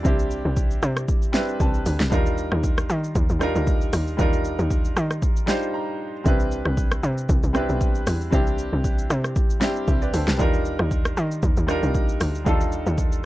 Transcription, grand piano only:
0.00 0.03 G3 medium
0.00 0.87 G3 medium
0.00 0.04 C4 medium
0.00 0.88 C4 medium
0.00 0.05 D4 medium
0.00 0.06 E4 medium
0.00 2.13 D5 loud
0.05 0.88 D4 medium
0.05 0.89 E4 medium
0.05 0.89 G4 loud
1.32 1.96 G3 medium
1.32 1.97 C4 medium
1.32 1.97 D4 medium
1.32 1.98 E4 medium
1.32 1.98 B4 loud
1.32 1.58 E5 medium
1.60 2.08 A5 medium
2.10 2.94 G3 medium
2.10 2.95 D4 medium
2.10 2.95 D#4 medium
2.10 2.96 F4 medium
2.10 2.96 A#4 loud
3.39 4.03 G3 medium
3.39 4.04 D4 medium
3.39 4.04 D#4 medium
3.39 4.05 F4 medium
3.39 4.05 A#4 loud
4.17 5.01 G3 medium
4.17 5.02 D4 medium
4.17 5.02 D#4 medium
4.17 5.03 F4 medium
4.17 5.03 A#4 loud
5.46 6.10 G3 medium
5.46 6.11 D4 medium
5.46 6.11 D#4 medium
5.46 6.12 F4 medium
5.46 6.12 C5 loud
5.46 5.72 G5 medium
5.74 6.22 A#5 medium
6.24 7.08 G3 medium
6.24 7.09 C4 medium
6.24 7.09 D4 medium
6.24 7.10 E4 medium
6.24 7.10 B4 loud
7.53 8.17 G3 medium
7.53 8.18 C4 medium
7.53 8.18 D4 medium
7.53 8.19 E4 medium
7.53 8.19 B4 loud
8.31 9.15 G3 medium
8.31 9.15 C4 medium
8.31 9.16 D4 medium
8.31 9.16 E4 medium
8.31 9.17 G4 loud
9.60 10.24 G3 medium
9.60 10.24 C4 medium
9.60 10.25 D4 medium
9.60 10.25 E4 medium
9.60 9.89 G4 loud
9.88 10.02 C5 medium
9.88 10.01 E5 medium
10.02 10.13 B4 medium
10.02 10.13 D5 medium
10.13 10.27 A4 medium
10.13 10.27 C5 medium
10.28 10.53 G4 medium
10.28 10.52 B4 medium
10.37 11.22 G3 medium
10.37 11.22 D4 medium
10.37 11.23 D#4 medium
10.37 11.23 F4 medium
10.37 11.24 A#4 loud
11.67 12.31 G3 medium
11.67 12.31 D4 medium
11.67 12.32 D#4 medium
11.67 12.32 F4 medium
11.67 12.33 A#4 loud
12.44 13.25 G3 medium
12.44 13.25 D4 medium
12.44 13.25 D#4 medium
12.44 13.25 F4 medium
12.44 13.25 A4 medium

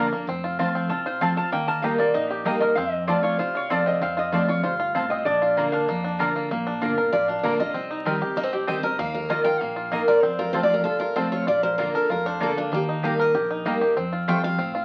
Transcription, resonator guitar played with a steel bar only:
0.89 1.05 A5 loud
1.06 1.21 C5 medium
1.22 1.37 F5 medium
1.37 1.52 A5 loud
1.52 1.68 G5 loud
1.68 1.83 A5 loud
1.82 1.98 F5 medium
1.98 2.14 D5 medium
2.14 2.30 D#5 loud
2.30 2.45 G4 medium
2.46 2.61 A#4 medium
2.60 2.76 D#5 loud
2.75 2.91 F5 loud
2.91 3.07 D#5 loud
3.08 3.22 D5 medium
3.23 3.38 C#5 loud
3.39 3.54 C5 medium
3.57 3.71 C#5 loud
3.71 3.86 D5 medium
3.87 4.02 D#5 loud
4.02 4.17 F5 loud
4.19 4.33 D#5 medium
4.34 4.49 D5 medium
4.49 4.64 C#5 medium
4.64 4.74 C5 medium
5.10 5.25 D#5 loud
5.25 5.69 D5 loud
5.72 6.01 F5 loud

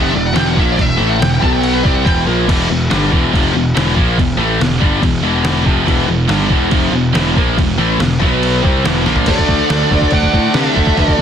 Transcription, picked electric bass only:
0.00 0.12 F1 medium
0.15 0.34 E1 medium
0.36 0.55 E1 loud
0.57 0.76 A#1 loud
0.78 0.98 E1 medium
1.00 1.19 A1 loud
1.21 1.40 E1 medium
1.42 1.81 B1 loud
1.85 2.04 C2 loud
2.06 2.25 E1 loud
2.27 2.46 A#1 loud
2.48 2.67 E1 medium
2.70 2.89 E1 medium
2.92 3.11 G1 loud
3.12 3.31 E1 loud
3.33 3.52 F1 medium
3.55 3.74 E1 medium
3.77 3.96 E1 loud
3.97 4.17 A#1 loud
4.18 4.37 E1 medium
4.37 4.58 A1 loud
4.60 4.80 E1 medium
4.82 5.01 G1 loud
5.02 5.22 E1 medium
5.22 5.63 E1 loud
5.66 5.86 F1 loud
5.87 6.07 E1 loud
6.08 6.28 E1 medium
6.29 6.49 G1 loud
6.50 6.71 E1 loud
6.72 6.90 F1 loud
6.91 7.12 E1 medium
7.14 7.35 E1 medium
7.37 7.56 A#1 loud
7.57 7.77 E1 medium
7.77 7.98 A1 loud
7.98 8.19 E1 medium
8.21 8.61 B1 medium
8.64 8.84 C2 loud
8.85 9.05 E1 medium
9.07 9.26 A#1 loud
9.27 9.41 D2 loud
9.48 9.62 D2 loud
9.70 9.83 D2 loud
9.91 10.04 D2 medium
10.13 10.26 D2 loud
10.33 10.47 A2 medium
10.54 10.68 C3 loud
10.76 10.90 D2 loud
10.98 11.11 D2 loud

